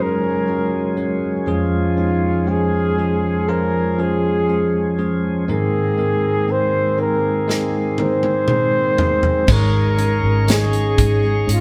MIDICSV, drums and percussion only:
0, 0, Header, 1, 2, 480
1, 0, Start_track
1, 0, Tempo, 1000000
1, 713, Time_signature, 4, 2, 24, 8
1, 5570, End_track
2, 0, Start_track
2, 0, Title_t, "Drums"
2, 3598, Note_on_c, 9, 38, 46
2, 3646, Note_off_c, 9, 38, 0
2, 3831, Note_on_c, 9, 48, 66
2, 3879, Note_off_c, 9, 48, 0
2, 3950, Note_on_c, 9, 48, 53
2, 3998, Note_off_c, 9, 48, 0
2, 4069, Note_on_c, 9, 47, 76
2, 4117, Note_off_c, 9, 47, 0
2, 4312, Note_on_c, 9, 43, 83
2, 4360, Note_off_c, 9, 43, 0
2, 4430, Note_on_c, 9, 43, 72
2, 4478, Note_off_c, 9, 43, 0
2, 4550, Note_on_c, 9, 49, 75
2, 4551, Note_on_c, 9, 36, 89
2, 4598, Note_off_c, 9, 49, 0
2, 4599, Note_off_c, 9, 36, 0
2, 4793, Note_on_c, 9, 42, 55
2, 4841, Note_off_c, 9, 42, 0
2, 5032, Note_on_c, 9, 42, 80
2, 5040, Note_on_c, 9, 38, 95
2, 5080, Note_off_c, 9, 42, 0
2, 5088, Note_off_c, 9, 38, 0
2, 5151, Note_on_c, 9, 42, 42
2, 5199, Note_off_c, 9, 42, 0
2, 5272, Note_on_c, 9, 36, 74
2, 5274, Note_on_c, 9, 42, 58
2, 5320, Note_off_c, 9, 36, 0
2, 5322, Note_off_c, 9, 42, 0
2, 5515, Note_on_c, 9, 42, 75
2, 5563, Note_off_c, 9, 42, 0
2, 5570, End_track
0, 0, End_of_file